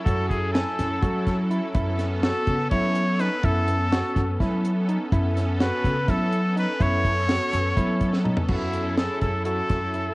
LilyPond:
<<
  \new Staff \with { instrumentName = "Trumpet" } { \time 7/8 \key a \major \tempo 4 = 124 a'8 gis'8 a'2 r8 | r4 a'4 cis''4 b'8 | a'2 r4. | r4 b'4 a'4 b'8 |
cis''2. r8 | e'4 a'8 a'8 a'4. | }
  \new Staff \with { instrumentName = "Tine electric piano" } { \time 7/8 \key a \major fis'4 gis''4 fis'4 e'8 | e'4 fis'4 e'4 dis'8 | e'4 fis'4 e'4 dis'8 | e'4 fis'4 e'4 dis'8 |
e'4 fis'4 e'4 dis'8 | fis'4 gis'4 fis'4 e'8 | }
  \new Staff \with { instrumentName = "Analog synth pad" } { \time 7/8 \key a \major <fis cis' e' a'>2.~ <fis cis' e' a'>8 | <b cis' a'>2.~ <b cis' a'>8~ | <b cis' a'>2.~ <b cis' a'>8 | <b cis' a'>2.~ <b cis' a'>8~ |
<b cis' a'>2.~ <b cis' a'>8 | <fis cis' e' a'>2.~ <fis cis' e' a'>8 | }
  \new Staff \with { instrumentName = "Upright bass" } { \clef bass \time 7/8 \key a \major fis,4. fis,8 fis4. | fis,4. cis8 fis4. | fis,4. fis,8 fis4. | fis,4. cis8 fis4. |
fis,4. fis,8 fis4. | fis,4. fis,4 fis,4 | }
  \new DrumStaff \with { instrumentName = "Drums" } \drummode { \time 7/8 <hh bd>8 <hh bd>8 <hh sn>8 <hh sn>8 <hh bd>8 <hh bd sn>8 hh8 | <hh bd>8 <hh sn>8 <hh sn>8 <hh bd>8 <hh bd>8 hh8 <hh sn>8 | <hh bd>8 hh8 <hh sn>8 <hh bd sn>8 <hh bd sn>8 hh8 hh8 | <hh bd>8 <hh sn>8 <hh sn>8 <hh bd>8 <hh bd sn>8 hh8 hh8 |
<hh bd>8 <hh bd>8 <hh sn>8 hh8 <hh bd>8 <hh bd>16 sn16 toml16 tomfh16 | <cymc bd>8 hh8 <hh sn>8 <hh bd>8 hh8 <hh bd sn>8 hh8 | }
>>